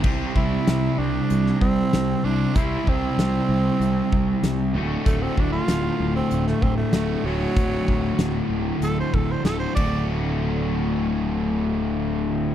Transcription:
<<
  \new Staff \with { instrumentName = "Tenor saxophone" } { \time 4/4 \key d \mixolydian \tempo 4 = 96 r8 e'4 d'4 c'4 d'8 | e'8 c'2. r8 | a16 c'16 d'16 f'4 c'8 a16 c'16 a8. fis8~ | fis4. r8 a'16 c''16 a'16 c''16 a'16 c''16 d''8 |
r1 | }
  \new Staff \with { instrumentName = "Distorted electric guitar" } { \time 4/4 \key d \mixolydian <c g c' e' g' c''>1 | <c g c' e' g' c''>2.~ <c g c' e' g' c''>8 <d, a, d a fis'>8~ | <d, a, d a fis'>2.~ <d, a, d a fis'>8 <d, a, d a fis'>8~ | <d, a, d a fis'>2.~ <d, a, d a fis'>8 <d, a, d a fis'>8~ |
<d, a, d a fis'>1 | }
  \new Staff \with { instrumentName = "Overdriven electric guitar" } { \time 4/4 \key d \mixolydian <c g c' e' g' c''>2.~ <c g c' e' g' c''>8 <c g c' e' g' c''>8 | <c g c' e' g' c''>2.~ <c g c' e' g' c''>8 <d, a, d a fis'>8~ | <d, a, d a fis'>2. <d, a, d a fis'>8 <d, a, d a fis'>8~ | <d, a, d a fis'>2. <d, a, d a fis'>8 <d, a, d a fis'>8~ |
<d, a, d a fis'>1 | }
  \new Staff \with { instrumentName = "Fingered electric bass" } { \clef bass \time 4/4 \key d \mixolydian c,8 c,8 c,8 c,8 c,8 c,8 c,8 c,8 | c,8 c,8 c,8 c,8 c,8 c,8 c,8 d,,8 | d,,8 d,,8 d,,8 d,,8 d,,8 d,,8 d,,8 d,,8 | d,,8 d,,8 d,,8 d,,8 d,,8 d,,8 d,,8 d,,8~ |
d,,1 | }
  \new DrumStaff \with { instrumentName = "Drums" } \drummode { \time 4/4 <cymc bd>8 bd8 <hh sn>4 hh16 sn16 bd8 <hh sn>4 | <hh bd>8 bd8 <hh sn>4 hh8 bd8 <hh sn>4 | <hh bd>8 bd8 <hh sn>4 hh16 sn16 bd8 <hh sn>4 | <hh bd>8 bd8 <hh sn>4 hh8 bd8 <hh sn>8 <cymc bd>8 |
r4 r4 r4 r4 | }
>>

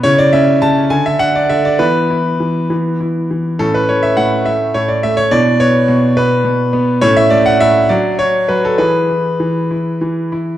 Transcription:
<<
  \new Staff \with { instrumentName = "Grand piano" } { \time 6/8 \key e \mixolydian \tempo 4. = 68 << { cis''16 d''16 e''8 a''8 gis''16 e''16 fis''16 d''16 e''16 d''16 | b'4. r4. | a'16 b'16 cis''16 e''16 fis''8 e''8 cis''16 d''16 e''16 cis''16 | d''8 cis''4 b'4. |
cis''16 e''16 d''16 fis''16 e''8 d''8 cis''8 b'16 a'16 | b'2~ b'8 r8 | } \\ { e'4. <d' a'>4. | <b e'>4. <b e'>4. | <cis' e'>2. | <d' e'>2. |
<cis' e'>4. <d' fis'>4. | <e' gis'>2. | } >> }
  \new Staff \with { instrumentName = "Grand piano" } { \clef bass \time 6/8 \key e \mixolydian cis8 cis'8 cis8 d8 d'8 d8 | e8 e'8 e8 e8 e'8 e8 | a,8 a8 a,8 a8 a,8 a8 | b,8 b8 b,8 b8 b,8 b8 |
a,8 a8 a,8 fis8 fis'8 fis8 | e8 e'8 e8 e'8 e8 e'8 | }
>>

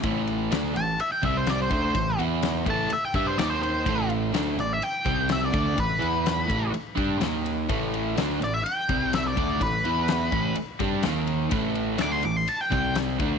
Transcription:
<<
  \new Staff \with { instrumentName = "Lead electric guitar" } { \time 4/4 \key a \minor \tempo 4 = 125 r4. a''8 e''16 g''16 e''16 c''16 d''16 c''16 c''8~ | c''8 r4 a''8 e''16 g''16 e''16 c''16 d''16 c''16 c''8~ | c''8 r4 d''16 e''16 g''4 e''16 d''8. | b'2 r2 |
r4. d''16 e''16 g''4 e''16 d''8. | b'2 r2 | r4 d'''16 c'''16 d'''16 c'''16 a''16 g''16 g''8 r4 | }
  \new Staff \with { instrumentName = "Overdriven electric guitar" } { \clef bass \time 4/4 \key a \minor <a, e a>4 <d a d'>8 <a, e>8 r8 <c g c'>4 <d a d'>8 | <a, e>8 <e b e'>4 <a, e a>8 r8 <g d' g'>8 <dis ais dis'>4 | <a, e a>4 <d a d'>8 <a, e>8 r8 <c g c'>4 <d a d'>8 | <a, e>8 <e b e'>4 <a, e a>8 r8 <g d' g'>8 <dis ais dis'>4 |
<a, e a>4 <d a d'>8 <a, e>8 r8 <c g c'>4 <d a d'>8 | <a, e>8 <e b e'>4 <a, e a>8 r8 <g d' g'>8 <dis ais dis'>4 | <a, e a>4 <d a d'>8 <a, e>8 r8 <c g c'>4 <d a d'>8 | }
  \new Staff \with { instrumentName = "Fingered electric bass" } { \clef bass \time 4/4 \key a \minor a,,4 d,8 a,,8 r8 c,4 d,8 | a,,8 e,4 a,,8 r8 g,8 dis,4 | a,,4 d,8 a,,8 r8 c,4 d,8 | a,,8 e,4 a,,8 r8 g,8 dis,4 |
a,,4 d,8 a,,8 r8 c,4 d,8 | a,,8 e,4 a,,8 r8 g,8 dis,4 | a,,4 d,8 a,,8 r8 c,4 d,8 | }
  \new DrumStaff \with { instrumentName = "Drums" } \drummode { \time 4/4 <bd cymr>8 cymr8 <cymr sn>8 <cymr sn>8 cymr8 <bd cymr>8 <cymr sn>8 <bd cymr>8 | <bd cymr>8 cymr8 <cymr sn>8 <bd cymr>8 cymr8 <bd cymr>8 <cymr sn>8 cymr8 | <bd cymr>8 cymr8 <cymr sn>8 <cymr sn>8 cymr8 <bd cymr>8 <cymr sn>8 <bd cymr>8 | <bd cymr>8 cymr8 <cymr sn>8 <bd cymr>8 cymr8 <bd cymr>8 <cymr sn>8 cymr8 |
<bd cymr>8 cymr8 <cymr sn>8 <cymr sn>8 cymr8 <bd cymr>8 <cymr sn>8 <bd cymr>8 | <bd cymr>8 cymr8 <cymr sn>8 <bd cymr>8 cymr8 <bd cymr>8 <cymr sn>8 cymr8 | <bd cymr>8 cymr8 <cymr sn>8 cymr8 cymr8 <bd cymr>8 <cymr sn>8 <bd cymr>8 | }
>>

